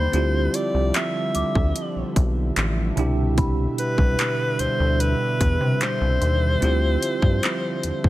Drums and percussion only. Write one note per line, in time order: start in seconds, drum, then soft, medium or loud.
0.13 closed hi-hat medium
0.54 closed hi-hat medium
0.94 clap loud
0.94 closed hi-hat medium
1.35 closed hi-hat medium
1.55 kick medium
1.76 closed hi-hat medium
2.16 kick loud
2.16 closed hi-hat medium
2.56 clap loud
2.56 closed hi-hat medium
2.97 closed hi-hat soft
3.38 kick loud
3.38 closed hi-hat medium
3.78 closed hi-hat medium
3.98 kick loud
4.19 clap loud
4.19 closed hi-hat medium
4.59 closed hi-hat medium
5.00 closed hi-hat medium
5.41 kick loud
5.41 closed hi-hat medium
5.81 clap loud
5.81 closed hi-hat medium
6.22 closed hi-hat soft
6.62 closed hi-hat medium
7.03 closed hi-hat medium
7.22 kick loud
7.43 clap loud
7.43 closed hi-hat medium
7.83 closed hi-hat medium
8.04 kick medium